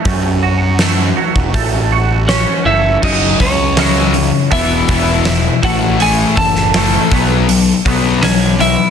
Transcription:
<<
  \new Staff \with { instrumentName = "Clean electric guitar" } { \time 4/4 \key fis \dorian \tempo 4 = 81 r2. <cis' cis''>8 <e' e''>8 | <dis' dis''>8 <cis' cis''>4. <e' e''>4. <fis' fis''>8 | <gis' gis''>8 <a' a''>2~ <a' a''>8 <cis' cis''>8 <e' e''>8 | }
  \new Staff \with { instrumentName = "Clean electric guitar" } { \clef bass \time 4/4 \key fis \dorian <fis, a cis' fis'>8 fis'8 a8 fis8 a8 fis'8 cis'8 a8 | <fis, cis fis>8 <fis, cis>8 <fis, cis fis>8 <fis, cis>8 <e, b, e>8 <e, b, e>8 r8 <a, e a>8 | <a, e a>8 r8 <a, e a>8 <b, fis b>8 <b, fis>8 <b, fis b>8 <b, fis>8 <b, fis>8 | }
  \new Staff \with { instrumentName = "Overdriven electric guitar" } { \clef bass \time 4/4 \key fis \dorian r1 | <fis, cis fis>8 <fis, cis>8 <fis, cis fis>8 <fis, cis>8 <e, b, e>8 <e, b, e>8 <e, b,>8 <a, e a>8 | <a, e a>8 <a, e>8 <a, e a>8 <b, fis b>8 <b, fis>8 <b, fis b>8 <b, fis>8 <b, fis>8 | }
  \new Staff \with { instrumentName = "Picked electric bass" } { \clef bass \time 4/4 \key fis \dorian fis,4.~ fis,16 dis,,16 a,,4. fis,,8 | fis,,8 cis,4. e,,8 e,,4 a,,8~ | a,,8 fis,,4 b,,4 b,,4. | }
  \new DrumStaff \with { instrumentName = "Drums" } \drummode { \time 4/4 <hho bd>4 <hho sn>8. bd16 <hho bd>4 <hho sn>4 | <cymc bd>8 <hho bd>8 <hho sn>8 hho8 <hho bd>8 <hho bd>8 <hho sn>8 <hho bd>8 | hho8 <hho bd>16 sn16 <hho sn>8 <hho bd>8 hho8 <hho bd>8 <hho sn>8 hho8 | }
>>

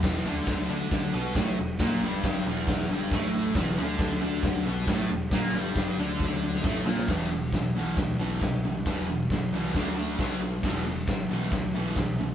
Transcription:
<<
  \new Staff \with { instrumentName = "Distorted electric guitar" } { \clef bass \time 4/4 \key e \minor \tempo 4 = 136 <e, e>8 <d d'>4 <d d'>4 <b, b>8 <a, a>8 e,8 | <ais, ais>8 <g, g>4 <e, e>4 <g, g>8 <a, a>4 | <e, e>8 <d d'>4 <d d'>4 <b, b>8 <a, a>8 e,8 | <ais, ais>8 <g, g>4 <d d'>4. <a, a>8 <ais, ais>8 |
<e, b, e>8 <e, b,>8 <e, b,>8 <e, b, e>8 <e, b,>8 <e, b, e>8 <e, b,>8 <e, b,>8 | <e, b, e>8 <e, b,>8 <e, b,>8 <e, b, e>8 <d a d'>8 <d a d'>8 <b, fis b>8 <b, fis>8 | <e, b, e>8 <e, b,>8 <e, b,>8 <e, b, e>8 <e, b,>8 <e, b, e>8 <e, b,>8 <e, b,>8 | }
  \new Staff \with { instrumentName = "Picked electric bass" } { \clef bass \time 4/4 \key e \minor e,,8 d,4 d,4 b,,8 a,,8 e,,8 | ais,,8 g,,4 e,,4 g,,8 a,,4 | e,,8 d,4 d,4 b,,8 a,,8 e,,8 | ais,,8 g,,4 d,4. a,,8 ais,,8 |
e,,4 a,,8 b,,8 d,8 b,,8 c,4 | e,,4 g,,8 c,8 d,4 b,,4 | e,,4 a,,8 b,,8 d,8 b,,8 c,4 | }
  \new DrumStaff \with { instrumentName = "Drums" } \drummode { \time 4/4 <cymc bd sn>4 <cymc bd sn>4 <cymc bd sn>4 <cymc bd sn>4 | <cymc bd sn>4 <cymc bd sn>4 <cymc bd sn>4 <cymc bd sn>4 | <cymc bd sn>4 <cymc bd sn>4 <cymc bd sn>4 <cymc bd sn>4 | <cymc bd sn>4 <cymc bd sn>4 <bd sn>16 sn8 sn16 <bd sn>8 sn16 sn16 |
<cymc bd sn>4 <hho bd sn>4 <hho bd sn>4 <hho bd sn>4 | <hho bd sn>4 <hho bd sn>4 <hho bd sn>4 <hho bd sn>4 | <cymc bd sn>4 <hho bd sn>4 <hho bd sn>4 <hho bd sn>4 | }
>>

